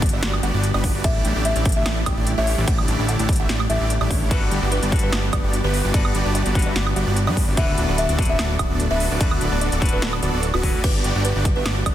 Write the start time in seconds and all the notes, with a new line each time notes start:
Already playing: G1 D3 F#3 G3 B3 F#4
0.02 kick, closed hi-hat
0.06 closed hi-hat
0.09 closed hi-hat
0.13 G1 B3 D4 F#4 G4 D5 E5
0.23 G1 B3 D4 F#4 G4 D5, snare, closed hi-hat
0.34 high woodblock
0.43 G1 B3 D4 F#4 G4 D5 F#5, closed hi-hat
0.54 G1 B3 D4 F#4 G4 D5
0.64 closed hi-hat
0.74 G1 B3 D4 F#4 G4 B4 D5, high woodblock
0.84 kick, open hi-hat
0.95 G1 B3 D4 F#4 G4 D5
1.04 A1 E3 A3 D4 E4 G4 D5 E5, kick, closed hi-hat, crash
1.25 A1 A3 D4 E4 G4 D5, closed hi-hat
1.36 A1 A3 D4 E4 G4 D5
1.45 E5, closed hi-hat
1.56 A1 A3 D4 E4 G4 D5, closed hi-hat
1.65 kick, closed hi-hat
1.69 closed hi-hat
1.72 closed hi-hat
1.76 A1 A3 D4 E4 G4 E5
1.86 A1 A3 D4 E4 G4 D5, snare, closed hi-hat, high woodblock
2.06 A1 A3 D4 E4 G4 D5 G5, kick, closed hi-hat, high woodblock
2.17 A1 A3 D4 E4 G4 D5
2.27 closed hi-hat
2.38 A1 A3 D4 E4 G4 C#5 E5
2.47 open hi-hat
2.58 A1 A3 D4 E4 G4 D5
2.68 A1 A3 D4 E4 G4 D5 F#5, kick, closed hi-hat, crash
2.78 high woodblock
2.88 A1 A3 D4 E4 G4 D5, closed hi-hat
2.99 A1 A3 D4 E4 G4 D5
3.09 F#5, closed hi-hat
3.19 A1 A3 D4 E4 G4 D5, closed hi-hat
3.29 kick, closed hi-hat
3.33 closed hi-hat
3.36 A3 D4 E4 G4 E5 F#5, closed hi-hat
3.40 A1
3.49 A1 A3 D4 E4 G4 D5, snare, closed hi-hat
3.60 high woodblock
3.70 A1 A3 D4 E4 G4 D5 E5, closed hi-hat
3.81 A1 A3 D4 E4 G4 D5
3.90 closed hi-hat
4.01 A1 A3 D4 E4 G4 D5, high woodblock
4.10 A1 A3 D4 E4 G4 C#5, kick, open hi-hat
4.29 G1 G3 B3 D4 F#4 G4 A4 B4 D5, kick, closed hi-hat, crash
4.51 G1 B3 D4 F#4 G4 D5, closed hi-hat
4.62 G1 B3 D4 F#4 G4 D5
4.72 B4, closed hi-hat
4.83 G1 B3 D4 F#4 G4 D5, closed hi-hat
4.90 G3 D4 F#4 A4, kick, closed hi-hat
4.94 B4, closed hi-hat
4.99 B4, closed hi-hat
5.03 G1 B3 D4 F#4 G4 E5
5.12 G1 B3 D4 F#4 G4 D5, snare, closed hi-hat, high woodblock
5.33 G1 B3 D4 F#4 G4 D5, kick, closed hi-hat, high woodblock
5.44 G1 B3 D4 F#4 G4 D5
5.53 closed hi-hat
5.64 G1 B3 D4 F#4 G4 B4
5.74 open hi-hat
5.85 G1 B3 D4 F#4 G4 D5
5.92 G1 G3 B3 D4 F#4 G4 A4 B4 D5, kick, closed hi-hat, crash
6.05 high woodblock
6.15 G1 B3 D4 F#4 G4 D5, closed hi-hat
6.26 G1 B3 D4 F#4 G4 D5
6.35 D5, closed hi-hat
6.46 G1 B3 D4 F#4 G4 D5, closed hi-hat
6.53 G3 D4 F#4 A4, kick, closed hi-hat
6.57 B4, closed hi-hat
6.62 D5, closed hi-hat
6.66 G1 B3 D4 F#4 G4 E5
6.76 G1 B3 D4 F#4 G4 D5, snare, closed hi-hat
6.87 high woodblock
6.96 G1 B3 D4 F#4 G4 D5 F#5, closed hi-hat
7.07 G1 B3 D4 F#4 G4 D5
7.17 closed hi-hat
7.27 G2 B3 D4 F#4 G4 B4 D5, high woodblock
7.37 kick, open hi-hat
7.48 G1 B3 D4 F#4 G4 D5
7.55 D1 D3 A3 B3 D4 E4 F#4 A4 D5 E5, kick, closed hi-hat, crash
7.59 B4
7.78 D1 B3 D4 F#4 A4 D5, closed hi-hat
7.89 D1 B3 D4 F#4 A4 D5
7.98 E5, closed hi-hat
8.09 D1 B3 D4 F#4 A4 D5, closed hi-hat
8.17 D3 D4 E4 F#4 B4, kick, closed hi-hat
8.22 closed hi-hat
8.25 closed hi-hat
8.29 D1 B3 D4 F#4 A4 E5
8.39 D1 B3 D4 F#4 A4 D5, snare, closed hi-hat, high woodblock
8.59 D1 B3 D4 F#4 A4 D5 F#5, kick, closed hi-hat, high woodblock
8.70 D1 B3 D4 F#4 A4 D5
8.80 closed hi-hat
8.91 D1 B3 D4 F#4 A4 B4 E5
9.00 open hi-hat
9.11 D1 B3 D4 F#4 A4 D5
9.19 D1 D3 B3 D4 E4 F#4 A4 D5, kick, closed hi-hat, crash
9.23 B4
9.31 high woodblock
9.41 D1 B3 D4 F#4 A4 D5, closed hi-hat
9.52 D1 B3 D4 F#4 A4 D5
9.61 D5, closed hi-hat
9.72 D1 B3 D4 F#4 A4 D5, closed hi-hat
9.80 D3 D4 E4 F#4 B4, kick, closed hi-hat
9.85 closed hi-hat
9.89 D1 B3, closed hi-hat
9.93 D4 F#4 A4 B4 E5
10.02 D1 B3 D4 F#4 A4 D5, snare, closed hi-hat
10.13 high woodblock
10.23 D1 B3 D4 F#4 A4 D5, closed hi-hat
10.33 D1 B3 D4 F#4 A4 D5
10.43 closed hi-hat
10.54 D1 B3 D4 F#4 A4 B4, high woodblock
10.63 D3 D4 E4 F#4 B4, kick, open hi-hat
10.74 D2 B3 D4 F#4 A4 D5
10.84 G1 B3 D4 F#4 G4 B4 D5, kick, closed hi-hat, crash
11.04 G1 B3 D4 F#4 G4 D5, closed hi-hat
11.15 G1 B3 D4 F#4 G4 D5
11.25 B4, closed hi-hat
11.36 G1 B3 D4 F#4 G4 D5
11.45 kick, closed hi-hat
11.56 G1 B3 D4 F#4 G4 B4 E5
11.66 G1 B3 D4 F#4 G4 D5, snare, closed hi-hat, high woodblock
11.86 G1 B3 D4 F#4 G4 D5, kick, closed hi-hat, high woodblock